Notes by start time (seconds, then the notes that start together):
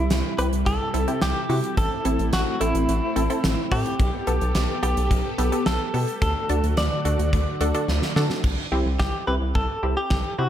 Already playing: C3 G3 E4
0.10 C2, snare, closed hi-hat
0.38 C2 C4 E4 G4 B4, closed hi-hat
0.52 C2, closed hi-hat
0.66 C2 A4, kick, closed hi-hat
0.94 C2 C4 E4 A4, closed hi-hat
1.08 C4 E4 G4, closed hi-hat
1.22 C2 G4, snare, closed hi-hat
1.49 C3 C4 E4 F#4, open hi-hat
1.64 closed hi-hat
1.77 A1 A3 C4 A4, kick, closed hi-hat
2.05 A1 C4 E4 A4, closed hi-hat
2.19 A1, closed hi-hat
2.33 A1 F#4, snare, closed hi-hat
2.61 A1 C4 E4 A4, closed hi-hat
2.75 A1, closed hi-hat
2.88 A1, closed hi-hat
3.16 A1 C4 E4 A4, closed hi-hat
3.30 C4 E4 A4, closed hi-hat
3.44 A1, snare, closed hi-hat
3.72 A2 C4 E4 G4 A4, kick, open hi-hat
3.86 closed hi-hat
4.00 B1 B3 G4 A4, kick, closed hi-hat
4.27 B1 B3 G4 A4, closed hi-hat
4.41 B1, closed hi-hat
4.55 B1, snare, closed hi-hat
4.83 B1 B3 G4 A4, closed hi-hat
4.97 B1, closed hi-hat
5.11 B1, kick, closed hi-hat
5.38 B1 B3 G4 A4, closed hi-hat
5.52 B3 G4 A4, closed hi-hat
5.66 B1 A4, snare, closed hi-hat
5.94 B2 B3 G4 A4, open hi-hat
6.08 closed hi-hat
6.22 D2 D3 A3 F#4 A4, kick, closed hi-hat
6.49 D2 D4 F#4 A4, closed hi-hat
6.63 D2, closed hi-hat
6.77 D2 D5, snare, closed hi-hat
7.05 D2 D4 F#4 A4, closed hi-hat
7.19 D2, closed hi-hat
7.33 D2, kick, closed hi-hat
7.61 D2 D4 F#4 A4, closed hi-hat
7.74 D4 F#4 A4, closed hi-hat
7.88 D2, snare
8.02 snare
8.16 D3 D4 F#4 A4, snare
8.30 snare
8.44 C2, kick, crash
8.72 C2 C4 E4 G4
8.86 C2
8.99 C2 G4, kick, snare
9.27 C2 C4 E4 G4 B4
9.41 C2
9.55 C2 A4, kick
9.83 C2 C4 E4 G4
9.97 G4
10.10 C2, kick, snare
10.38 C3 C4 E4 F#4 G4